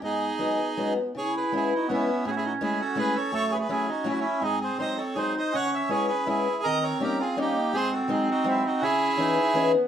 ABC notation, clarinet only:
X:1
M:3/4
L:1/8
Q:1/4=164
K:G#m
V:1 name="Clarinet"
B,2 B,2 C B, | [K:C#m] E4 B,2 | C6 | A,2 C4 |
^B,4 D2 | C4- C z | ^B,4 ^A,2 | ^B,6 |
C2 D2 C B, |]